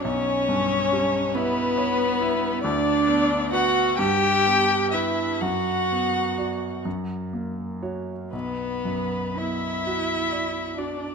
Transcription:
0.03 B1 C#4 C#5
0.49 G2
0.93 G3
1.34 B3 E4 B4
1.78 C#5
2.21 E4
2.62 D2 D4 D5
3.07 B3
3.52 F#4 B4 F#5
3.98 G2 G4 G5
4.45 B3
4.91 E4 B4 E5
5.41 F#2 F#4 F#5
5.91 B3
6.38 F#4 D5
6.85 F#2
7.33 A#3
7.82 F#4 C#5
8.32 B1 B3 B4
8.85 F#2
9.37 B3 E4 E5
9.87 F#4
10.32 D5
10.77 D4 F#4 D5

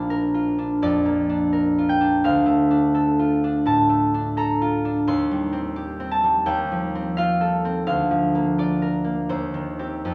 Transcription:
Already playing: A#1 A#3 D4 F4 F5
0.10 A#4
0.34 F4
0.58 D4
0.82 F2 D5
1.06 A#3
1.29 D4
1.53 A#4
1.78 F4
1.89 G5
2.01 D4
2.24 D2 F5
2.46 A3
2.71 D4
2.95 A4
3.19 F4
3.44 D4
3.66 A2 A5
3.89 A3
4.14 D4
4.37 A4 A#5
4.61 F4
4.85 D4
5.07 D#2 C6
5.31 G3
5.53 C4
5.76 G4
6.00 C4
6.11 A5
6.24 G3
6.46 D#2 G5
6.72 F3
6.95 C4
7.17 F4 F5
7.41 A4
7.65 C4
7.87 D2 F5
8.11 F3
8.35 A#3
8.58 F4 D5
8.82 A#4
9.04 A#3
9.29 D#2 C5
9.54 D#3
9.79 C4 G4
10.05 F2

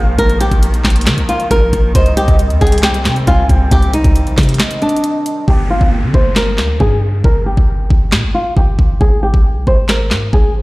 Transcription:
Already playing: A#1 D#3 F3 A#3 F5
0.18 A#1 A#4, kick, closed hi-hat
0.30 closed hi-hat
0.41 G4, closed hi-hat
0.52 A#1, kick, closed hi-hat
0.63 closed hi-hat
0.74 closed hi-hat
0.84 A#1, kick, snare, clap, closed hi-hat
0.90 closed hi-hat
0.96 closed hi-hat
1.01 closed hi-hat
1.06 D3, snare, clap, closed hi-hat
1.18 A#1, closed hi-hat
1.29 F4, closed hi-hat
1.40 closed hi-hat
1.51 A#1 A#4, kick, closed hi-hat
1.73 A#1, kick, closed hi-hat
1.95 C2 C3 G3 C4 C5 D#5, kick, closed hi-hat
2.06 closed hi-hat
2.17 G4, closed hi-hat
2.28 C2, kick, closed hi-hat
2.39 closed hi-hat
2.50 D#2, closed hi-hat
2.61 C2 G#4 G5, kick, closed hi-hat
2.67 closed hi-hat
2.72 closed hi-hat
2.78 closed hi-hat
2.83 G4, snare, clap, closed hi-hat
2.94 closed hi-hat
3.05 C3, snare, clap, closed hi-hat
3.16 closed hi-hat
3.27 C2 F4 G#5, kick, closed hi-hat
3.49 C2 G5, kick, closed hi-hat
3.71 C2 G4, kick, closed hi-hat
3.82 closed hi-hat
3.93 D#4, closed hi-hat
4.04 C2, kick, closed hi-hat
4.16 closed hi-hat
4.27 A#1, closed hi-hat
4.37 C3, kick, snare, clap, closed hi-hat, open hi-hat
4.43 closed hi-hat
4.49 closed hi-hat
4.54 closed hi-hat
4.59 D#5, snare, clap, closed hi-hat
4.71 closed hi-hat
4.82 D4, closed hi-hat
4.89 closed hi-hat
4.96 closed hi-hat
5.04 closed hi-hat
5.26 closed hi-hat
5.48 G1 G4, kick, downlifter
5.70 F4
5.81 G1, kick
6.03 D3
6.14 G1 C5, kick
6.36 A#4, snare, clap
6.58 D2, snare, clap
6.80 G2 G#4, kick
7.24 G1 A#4, kick
7.46 G4
7.57 G1, kick
7.90 G1, kick
8.12 A#2, snare, clap
8.24 G1
8.34 F4
8.57 G1 G4, kick
8.79 G1, kick
9.01 G#1 G#4, kick
9.23 G4
9.34 G#1, kick
9.56 C2
9.67 G#1 C5, kick
9.89 A#4, snare, clap
10.11 G#2, snare, clap
10.33 G#1 G#4, kick

